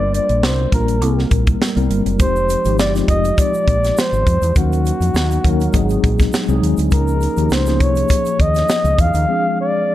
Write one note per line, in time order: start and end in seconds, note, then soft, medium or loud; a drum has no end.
0.00 0.19 G1 medium
0.00 0.52 G3 medium
0.00 0.53 A#3 medium
0.00 0.53 D4 medium
0.00 0.53 F4 medium
0.00 0.53 A#4 medium
0.00 0.14 D5 medium
0.14 0.46 D5 medium
0.14 closed hi-hat medium
0.29 0.43 A#1 medium
0.29 closed hi-hat soft
0.43 0.66 C2 medium
0.43 0.73 C5 medium
0.43 snare loud
0.72 1.01 A#1 medium
0.72 1.00 G3 medium
0.72 1.01 A#3 medium
0.72 1.02 D4 medium
0.72 1.02 F4 medium
0.72 1.02 A#4 medium
0.72 1.28 A#4 medium
0.72 kick medium
0.72 closed hi-hat medium
0.88 closed hi-hat medium
1.01 1.24 C2 medium
1.01 1.61 G3 medium
1.01 1.61 A#3 medium
1.01 1.61 C4 medium
1.01 1.61 E4 medium
1.01 1.09 A4 medium
1.01 closed hi-hat medium
1.09 1.65 A#4 medium
1.19 snare soft
1.31 1.54 A#1 medium
1.31 kick medium
1.31 closed hi-hat medium
1.47 kick medium
1.47 closed hi-hat soft
1.62 snare loud
1.75 1.87 C2 medium
1.75 2.10 G3 medium
1.75 2.10 A#3 medium
1.75 2.10 C4 medium
1.75 2.10 E4 medium
1.75 2.10 A#4 medium
1.75 closed hi-hat soft
1.90 2.02 G1 medium
1.90 closed hi-hat medium
2.06 2.20 F#1 medium
2.06 closed hi-hat medium
2.19 2.54 F1 medium
2.19 2.54 F3 medium
2.19 2.54 G#3 medium
2.19 2.54 C4 medium
2.19 2.54 D#4 medium
2.19 2.54 G4 medium
2.19 2.76 C5 loud
2.19 kick loud
2.19 closed hi-hat medium
2.19 shaker medium
2.36 shaker soft
2.49 closed hi-hat medium
2.49 shaker soft
2.65 2.79 G#1 medium
2.65 2.87 F3 medium
2.65 2.87 G#3 medium
2.65 2.88 C4 medium
2.65 2.88 D#4 medium
2.65 2.88 G4 medium
2.65 closed hi-hat medium
2.65 shaker soft
2.79 3.01 G1 medium
2.79 2.93 D5 medium
2.79 snare loud
2.79 shaker medium
2.94 3.85 F3 medium
2.94 3.85 G#3 medium
2.94 3.85 C4 medium
2.94 3.85 D#4 medium
2.94 3.01 F4 medium
2.94 snare soft
2.94 closed hi-hat soft
2.94 shaker soft
3.02 3.89 G4 medium
3.08 3.31 F1 medium
3.08 3.41 D#5 medium
3.08 kick medium
3.08 closed hi-hat medium
3.25 closed hi-hat soft
3.25 shaker soft
3.38 4.00 D5 loud
3.38 kick medium
3.38 closed hi-hat medium
3.38 shaker medium
3.54 shaker soft
3.67 3.90 A#1 medium
3.67 kick medium
3.67 closed hi-hat medium
3.84 snare soft
3.84 closed hi-hat medium
3.84 shaker soft
3.97 4.56 C5 medium
3.97 snare loud
3.97 shaker medium
4.12 4.23 G#1 medium
4.12 shaker soft
4.27 4.39 F2 medium
4.27 kick medium
4.27 closed hi-hat medium
4.42 4.52 E2 medium
4.42 closed hi-hat soft
4.42 shaker soft
4.54 4.90 D#2 medium
4.54 5.24 F#3 medium
4.54 5.24 A#3 medium
4.54 5.24 C#4 medium
4.54 5.24 D#4 medium
4.54 6.29 F#4 medium
4.54 5.24 A#4 medium
4.54 kick loud
4.54 closed hi-hat medium
4.54 shaker medium
4.73 closed hi-hat soft
4.73 shaker soft
4.85 closed hi-hat medium
4.85 shaker soft
5.00 5.11 F2 medium
5.00 closed hi-hat soft
5.00 shaker soft
5.14 5.37 D#2 medium
5.14 snare loud
5.14 shaker medium
5.31 closed hi-hat soft
5.31 shaker soft
5.43 5.67 D#2 medium
5.43 5.71 F#3 medium
5.43 5.73 A#3 medium
5.43 5.74 C#4 medium
5.43 5.72 D#4 medium
5.43 5.74 A#4 loud
5.43 kick medium
5.43 closed hi-hat medium
5.60 closed hi-hat soft
5.60 shaker soft
5.73 5.96 G#1 loud
5.73 6.32 F#3 medium
5.73 6.32 G#3 medium
5.73 6.33 C4 medium
5.73 6.33 D#4 medium
5.73 6.33 G#4 loud
5.73 kick medium
5.73 closed hi-hat medium
5.73 shaker medium
5.89 closed hi-hat soft
5.89 shaker soft
6.04 6.26 A#1 medium
6.04 kick medium
6.04 closed hi-hat medium
6.19 kick medium
6.19 snare soft
6.19 closed hi-hat soft
6.19 shaker soft
6.33 snare loud
6.33 shaker medium
6.48 6.59 C2 medium
6.48 6.82 F#3 medium
6.48 6.82 G#3 medium
6.48 6.82 C4 medium
6.48 6.83 D#4 medium
6.48 6.83 G#4 medium
6.48 shaker soft
6.62 6.74 D#2 medium
6.62 closed hi-hat medium
6.77 6.88 D2 medium
6.77 closed hi-hat soft
6.77 shaker soft
6.91 7.26 C#2 loud
6.91 7.26 F3 medium
6.91 7.26 A#3 medium
6.91 7.26 C#4 medium
6.91 7.26 D#4 medium
6.91 7.26 G#4 medium
6.91 7.55 A#4 medium
6.91 kick loud
6.91 closed hi-hat medium
6.91 shaker medium
7.08 shaker soft
7.21 closed hi-hat medium
7.21 shaker soft
7.37 7.48 D#2 medium
7.37 7.59 F3 medium
7.37 7.59 A#3 medium
7.37 7.59 C#4 medium
7.37 7.60 D#4 medium
7.37 7.60 G4 medium
7.37 closed hi-hat soft
7.37 shaker soft
7.50 7.80 C#2 medium
7.50 7.83 C5 medium
7.50 snare loud
7.50 shaker medium
7.66 8.57 F3 medium
7.66 8.57 A#3 medium
7.66 8.57 C#4 medium
7.66 8.57 D#4 medium
7.66 8.58 G#4 medium
7.66 snare soft
7.66 closed hi-hat soft
7.66 shaker medium
7.80 8.03 C2 medium
7.80 8.43 C#5 loud
7.80 kick medium
7.80 closed hi-hat medium
7.96 closed hi-hat medium
7.96 shaker soft
8.09 kick medium
8.09 closed hi-hat medium
8.09 shaker medium
8.25 closed hi-hat soft
8.25 shaker soft
8.40 8.62 D#2 medium
8.40 9.02 D#5 loud
8.40 kick medium
8.40 closed hi-hat medium
8.55 snare soft
8.55 closed hi-hat medium
8.55 shaker soft
8.69 snare loud
8.69 shaker medium
8.84 8.95 C#2 medium
8.84 closed hi-hat soft
8.84 shaker soft
8.98 9.11 E2 medium
8.98 9.58 F5 loud
8.98 kick medium
8.98 closed hi-hat medium
9.14 9.25 D#2 medium
9.14 closed hi-hat soft
9.14 shaker soft
9.27 9.95 F3 medium
9.27 9.95 G#3 medium
9.27 9.95 C4 medium
9.27 9.95 D4 medium
9.27 9.95 G#4 medium
9.61 9.95 D5 medium